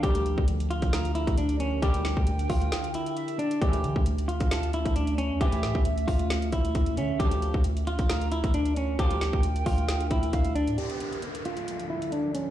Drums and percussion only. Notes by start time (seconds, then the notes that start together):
0.03 kick, closed hi-hat
0.15 closed hi-hat
0.26 closed hi-hat
0.38 kick
0.48 closed hi-hat
0.60 closed hi-hat
0.71 closed hi-hat
0.82 kick, closed hi-hat
0.93 snare, closed hi-hat
1.05 closed hi-hat
1.15 closed hi-hat
1.27 kick, closed hi-hat
1.38 closed hi-hat
1.49 closed hi-hat
1.60 closed hi-hat
1.82 kick, closed hi-hat
1.94 closed hi-hat
2.05 snare, closed hi-hat
2.17 kick
2.27 closed hi-hat
2.39 closed hi-hat
2.50 kick, closed hi-hat, open hi-hat
2.62 closed hi-hat
2.72 snare, closed hi-hat
2.84 closed hi-hat
2.94 closed hi-hat
3.06 closed hi-hat
3.17 closed hi-hat
3.28 closed hi-hat
3.39 closed hi-hat
3.51 closed hi-hat
3.62 kick, closed hi-hat
3.73 closed hi-hat
3.84 closed hi-hat
3.96 kick
4.06 closed hi-hat
4.18 closed hi-hat
4.29 closed hi-hat
4.40 kick, closed hi-hat
4.51 snare, closed hi-hat
4.63 closed hi-hat
4.73 closed hi-hat
4.85 kick, closed hi-hat
4.96 closed hi-hat
5.07 closed hi-hat
5.18 closed hi-hat
5.41 kick, closed hi-hat
5.52 closed hi-hat
5.63 snare, closed hi-hat
5.75 kick
5.85 closed hi-hat
5.98 closed hi-hat
6.08 kick, open hi-hat
6.19 closed hi-hat
6.30 snare, closed hi-hat
6.42 closed hi-hat
6.52 kick, closed hi-hat
6.65 closed hi-hat
6.75 kick, closed hi-hat
6.86 closed hi-hat
6.97 closed hi-hat
7.20 kick, closed hi-hat
7.31 closed hi-hat
7.42 closed hi-hat
7.54 kick
7.64 closed hi-hat
7.77 closed hi-hat
7.87 closed hi-hat
7.99 kick, closed hi-hat
8.10 snare, closed hi-hat
8.21 closed hi-hat
8.32 closed hi-hat
8.44 kick, closed hi-hat
8.54 closed hi-hat
8.65 closed hi-hat
8.76 closed hi-hat
8.99 kick, closed hi-hat
9.11 closed hi-hat
9.21 snare, closed hi-hat
9.33 kick
9.43 closed hi-hat
9.56 closed hi-hat
9.66 kick, closed hi-hat, open hi-hat
9.78 closed hi-hat
9.88 snare, closed hi-hat
10.00 closed hi-hat
10.11 kick, closed hi-hat
10.23 closed hi-hat
10.33 kick, closed hi-hat
10.44 closed hi-hat
10.56 closed hi-hat
10.67 closed hi-hat
10.78 closed hi-hat
10.90 closed hi-hat
11.00 closed hi-hat
11.13 closed hi-hat
11.22 closed hi-hat
11.35 closed hi-hat
11.45 closed hi-hat
11.57 closed hi-hat
11.68 closed hi-hat
11.80 closed hi-hat
12.02 closed hi-hat
12.12 closed hi-hat
12.35 closed hi-hat